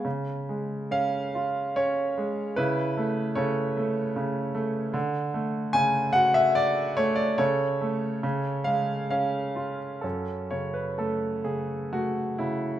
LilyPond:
<<
  \new Staff \with { instrumentName = "Grand piano" } { \time 3/4 \key fis \minor \tempo 4 = 71 << { r4 eis''4 cis''4 | b'4 cis''4. r8 | r4 gis''8 fis''16 e''16 d''8 cis''16 d''16 | cis''4. eis''8 eis''8. r16 |
a'8 cis''16 b'16 a'8 gis'8 fis'8 e'8 | } \\ { r2. | e'4 a'4. r8 | r2. | a'4. r4. |
cis'4. r4. | } >> }
  \new Staff \with { instrumentName = "Grand piano" } { \clef bass \time 3/4 \key fis \minor cis8 gis8 cis'8 eis'8 cis'8 gis8 | cis8 a8 cis8 a8 cis8 a8 | d8 a8 cis8 fis'4 a8 | cis8 a8 cis8 gis8 cis'8 eis'8 |
fis,8 cis8 a8 cis8 a8 cis8 | }
>>